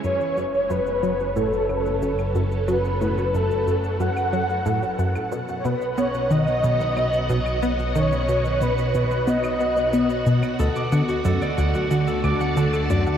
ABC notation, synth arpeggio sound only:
X:1
M:4/4
L:1/16
Q:1/4=91
K:F#m
V:1 name="Synth arpeggio sound" clef=bass
F,, z F,,2 F,,2 F,2 A,, z F,, z F,,2 F,,2 | F,2 A,, z F,, z F,,2 F,,2 F,2 A,, z F,, z | B,,2 B,,2 B,2 ^D, z B,, z B,,2 B,,2 B,2 | ^D, z B,, z B,,2 B,,2 B,2 B, z B, z B,, z |
D,,2 D,2 F,, z D,, z D, z D,,2 D,2 F,, z |]